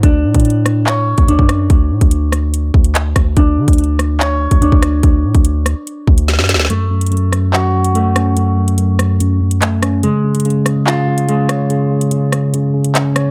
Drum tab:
HH |x-----xxxx--x---------x-x---x---|x-----x-x---x---x-----x-x---x---|x-----xxxx--x---------x-x---x---|x-----x-x---x---x-----x-x---x---|
CP |----------------x---------------|------------------------x-------|----------------x---------------|--------------------------------|
SD |------------r---------------r---|------------r---------------r---|------------r---------------r---|------------r-----------oooooooo|
BD |o-----o---------------o---o-----|o-----o-------------o-------o---|o-----o---------------o---o-----|o-----o-------------o-----------|

HH |x-----xxxx--x---------x-x---x---|x-----x-x---x---x-----x-x---x---|x-----xxxx--x---------x-x---x---|x-----x-x---x---x-----x-x---x---|
CP |----------------x---------------|------------------------x-------|----------------x---------------|------------------------x-------|
SD |------------r---------------r---|------------r---------------r---|------------r---------------r---|------------r---------------r---|
BD |--------------------------------|--------------------------------|--------------------------------|--------------------------------|